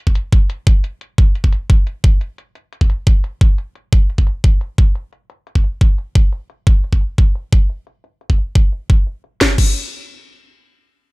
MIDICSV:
0, 0, Header, 1, 2, 480
1, 0, Start_track
1, 0, Tempo, 342857
1, 1655, Time_signature, 4, 2, 24, 8
1, 15569, End_track
2, 0, Start_track
2, 0, Title_t, "Drums"
2, 95, Note_on_c, 9, 36, 59
2, 215, Note_on_c, 9, 42, 78
2, 235, Note_off_c, 9, 36, 0
2, 355, Note_off_c, 9, 42, 0
2, 455, Note_on_c, 9, 36, 104
2, 455, Note_on_c, 9, 42, 89
2, 595, Note_off_c, 9, 36, 0
2, 595, Note_off_c, 9, 42, 0
2, 695, Note_on_c, 9, 42, 80
2, 835, Note_off_c, 9, 42, 0
2, 935, Note_on_c, 9, 36, 107
2, 935, Note_on_c, 9, 42, 92
2, 1075, Note_off_c, 9, 36, 0
2, 1075, Note_off_c, 9, 42, 0
2, 1175, Note_on_c, 9, 42, 79
2, 1315, Note_off_c, 9, 42, 0
2, 1415, Note_on_c, 9, 42, 95
2, 1555, Note_off_c, 9, 42, 0
2, 1655, Note_on_c, 9, 36, 122
2, 1655, Note_on_c, 9, 42, 77
2, 1795, Note_off_c, 9, 36, 0
2, 1795, Note_off_c, 9, 42, 0
2, 1895, Note_on_c, 9, 42, 90
2, 2015, Note_on_c, 9, 36, 61
2, 2035, Note_off_c, 9, 42, 0
2, 2135, Note_on_c, 9, 42, 74
2, 2155, Note_off_c, 9, 36, 0
2, 2275, Note_off_c, 9, 42, 0
2, 2375, Note_on_c, 9, 42, 85
2, 2376, Note_on_c, 9, 36, 106
2, 2515, Note_off_c, 9, 42, 0
2, 2516, Note_off_c, 9, 36, 0
2, 2615, Note_on_c, 9, 42, 80
2, 2755, Note_off_c, 9, 42, 0
2, 2855, Note_on_c, 9, 42, 88
2, 2856, Note_on_c, 9, 36, 107
2, 2995, Note_off_c, 9, 42, 0
2, 2996, Note_off_c, 9, 36, 0
2, 3095, Note_on_c, 9, 42, 78
2, 3235, Note_off_c, 9, 42, 0
2, 3336, Note_on_c, 9, 42, 88
2, 3476, Note_off_c, 9, 42, 0
2, 3575, Note_on_c, 9, 42, 75
2, 3715, Note_off_c, 9, 42, 0
2, 3816, Note_on_c, 9, 42, 87
2, 3936, Note_on_c, 9, 36, 60
2, 3956, Note_off_c, 9, 42, 0
2, 4056, Note_on_c, 9, 42, 75
2, 4076, Note_off_c, 9, 36, 0
2, 4196, Note_off_c, 9, 42, 0
2, 4296, Note_on_c, 9, 36, 100
2, 4296, Note_on_c, 9, 42, 85
2, 4436, Note_off_c, 9, 36, 0
2, 4436, Note_off_c, 9, 42, 0
2, 4536, Note_on_c, 9, 42, 75
2, 4676, Note_off_c, 9, 42, 0
2, 4776, Note_on_c, 9, 36, 105
2, 4776, Note_on_c, 9, 42, 88
2, 4916, Note_off_c, 9, 36, 0
2, 4916, Note_off_c, 9, 42, 0
2, 5016, Note_on_c, 9, 42, 75
2, 5156, Note_off_c, 9, 42, 0
2, 5256, Note_on_c, 9, 42, 88
2, 5396, Note_off_c, 9, 42, 0
2, 5496, Note_on_c, 9, 36, 117
2, 5496, Note_on_c, 9, 42, 74
2, 5636, Note_off_c, 9, 36, 0
2, 5636, Note_off_c, 9, 42, 0
2, 5736, Note_on_c, 9, 42, 88
2, 5856, Note_on_c, 9, 36, 60
2, 5876, Note_off_c, 9, 42, 0
2, 5975, Note_on_c, 9, 42, 74
2, 5996, Note_off_c, 9, 36, 0
2, 6115, Note_off_c, 9, 42, 0
2, 6216, Note_on_c, 9, 36, 99
2, 6216, Note_on_c, 9, 42, 86
2, 6356, Note_off_c, 9, 36, 0
2, 6356, Note_off_c, 9, 42, 0
2, 6455, Note_on_c, 9, 42, 76
2, 6595, Note_off_c, 9, 42, 0
2, 6696, Note_on_c, 9, 36, 101
2, 6696, Note_on_c, 9, 42, 87
2, 6836, Note_off_c, 9, 36, 0
2, 6836, Note_off_c, 9, 42, 0
2, 6936, Note_on_c, 9, 42, 72
2, 7076, Note_off_c, 9, 42, 0
2, 7176, Note_on_c, 9, 42, 87
2, 7316, Note_off_c, 9, 42, 0
2, 7416, Note_on_c, 9, 42, 73
2, 7556, Note_off_c, 9, 42, 0
2, 7656, Note_on_c, 9, 42, 91
2, 7776, Note_on_c, 9, 36, 59
2, 7796, Note_off_c, 9, 42, 0
2, 7896, Note_on_c, 9, 42, 74
2, 7916, Note_off_c, 9, 36, 0
2, 8036, Note_off_c, 9, 42, 0
2, 8136, Note_on_c, 9, 36, 99
2, 8136, Note_on_c, 9, 42, 90
2, 8276, Note_off_c, 9, 36, 0
2, 8276, Note_off_c, 9, 42, 0
2, 8376, Note_on_c, 9, 42, 77
2, 8516, Note_off_c, 9, 42, 0
2, 8616, Note_on_c, 9, 36, 101
2, 8616, Note_on_c, 9, 42, 90
2, 8756, Note_off_c, 9, 36, 0
2, 8756, Note_off_c, 9, 42, 0
2, 8856, Note_on_c, 9, 42, 77
2, 8996, Note_off_c, 9, 42, 0
2, 9096, Note_on_c, 9, 42, 89
2, 9236, Note_off_c, 9, 42, 0
2, 9336, Note_on_c, 9, 36, 111
2, 9336, Note_on_c, 9, 42, 79
2, 9476, Note_off_c, 9, 36, 0
2, 9476, Note_off_c, 9, 42, 0
2, 9576, Note_on_c, 9, 42, 91
2, 9696, Note_on_c, 9, 36, 54
2, 9716, Note_off_c, 9, 42, 0
2, 9816, Note_on_c, 9, 42, 77
2, 9836, Note_off_c, 9, 36, 0
2, 9956, Note_off_c, 9, 42, 0
2, 10056, Note_on_c, 9, 36, 93
2, 10196, Note_off_c, 9, 36, 0
2, 10296, Note_on_c, 9, 42, 79
2, 10436, Note_off_c, 9, 42, 0
2, 10535, Note_on_c, 9, 42, 93
2, 10536, Note_on_c, 9, 36, 99
2, 10675, Note_off_c, 9, 42, 0
2, 10676, Note_off_c, 9, 36, 0
2, 10776, Note_on_c, 9, 42, 80
2, 10916, Note_off_c, 9, 42, 0
2, 11015, Note_on_c, 9, 42, 91
2, 11155, Note_off_c, 9, 42, 0
2, 11256, Note_on_c, 9, 42, 82
2, 11396, Note_off_c, 9, 42, 0
2, 11496, Note_on_c, 9, 42, 91
2, 11616, Note_on_c, 9, 36, 57
2, 11636, Note_off_c, 9, 42, 0
2, 11735, Note_on_c, 9, 42, 80
2, 11756, Note_off_c, 9, 36, 0
2, 11875, Note_off_c, 9, 42, 0
2, 11976, Note_on_c, 9, 36, 99
2, 12116, Note_off_c, 9, 36, 0
2, 12215, Note_on_c, 9, 42, 84
2, 12355, Note_off_c, 9, 42, 0
2, 12455, Note_on_c, 9, 42, 97
2, 12456, Note_on_c, 9, 36, 100
2, 12595, Note_off_c, 9, 42, 0
2, 12596, Note_off_c, 9, 36, 0
2, 12696, Note_on_c, 9, 42, 80
2, 12836, Note_off_c, 9, 42, 0
2, 12936, Note_on_c, 9, 42, 90
2, 13076, Note_off_c, 9, 42, 0
2, 13175, Note_on_c, 9, 36, 112
2, 13176, Note_on_c, 9, 38, 83
2, 13315, Note_off_c, 9, 36, 0
2, 13316, Note_off_c, 9, 38, 0
2, 13416, Note_on_c, 9, 36, 109
2, 13416, Note_on_c, 9, 49, 83
2, 13556, Note_off_c, 9, 36, 0
2, 13556, Note_off_c, 9, 49, 0
2, 15569, End_track
0, 0, End_of_file